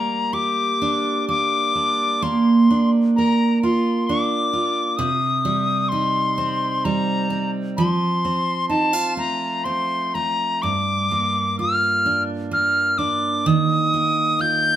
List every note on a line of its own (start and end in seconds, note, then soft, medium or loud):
0.00 2.22 G3 soft
0.00 1.28 A#3 soft
0.00 0.33 D4 medium
0.00 0.35 A#5 soft
0.33 2.33 G4 soft
0.33 1.28 D6 medium
0.82 1.75 D4 soft
1.29 2.22 A#3 soft
1.29 2.24 D6 medium
1.75 2.70 D4 soft
2.22 4.98 A#3 medium
2.22 2.90 C6 medium
2.70 4.08 D4 soft
3.16 5.08 A#4 soft
3.16 3.59 A#5 medium
3.63 4.52 F4 soft
3.63 4.08 C6 medium
4.07 5.08 D4 soft
4.07 4.98 D6 medium
4.53 5.08 F4 soft
4.97 7.77 C3 medium
4.97 5.90 D#6 medium
5.45 6.84 G3 soft
5.89 7.86 D#4 soft
5.89 6.86 C6 medium
6.38 7.30 C4 soft
6.85 7.86 G3 soft
6.85 7.51 A#5 medium
7.30 8.25 C4 soft
7.77 10.66 F3 medium
7.77 8.66 C6 soft
8.25 9.64 C4 soft
8.69 8.93 D#4 soft
8.69 9.14 A5 medium
8.93 10.73 F4 soft
9.17 10.14 A3 soft
9.17 9.66 A#5 medium
9.64 10.72 C4 soft
9.64 10.16 C6 medium
10.14 10.73 A3 soft
10.14 10.64 A#5 soft
10.62 13.47 G2 soft
10.62 11.59 D6 soft
11.11 12.51 A#3 soft
11.59 14.39 F4 soft
11.59 12.23 F6 medium
12.06 12.97 D4 soft
12.51 13.93 A#3 soft
12.51 13.00 F6 medium
12.98 13.56 D4 soft
12.98 13.48 D6 medium
13.46 14.76 D#3 medium
13.46 14.43 D#6 medium
13.94 14.76 A#3 soft
14.39 14.76 F4 soft
14.39 14.76 G6 medium